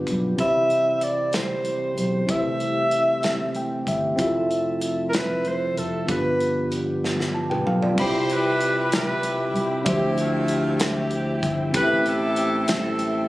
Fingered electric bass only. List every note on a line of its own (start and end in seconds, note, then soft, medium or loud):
0.07 0.36 B1 medium
0.39 1.93 C2 medium
1.97 2.27 B1 medium
2.29 3.83 C2 medium
3.87 4.16 G1 medium
4.18 5.73 F1 medium
5.77 6.06 F1 medium
6.08 7.62 G1 medium
7.66 7.95 B1 medium
7.98 9.51 C2 medium
9.55 9.84 C2 medium
9.86 11.39 D2 loud
11.43 11.72 G1 medium
11.74 13.27 A1 loud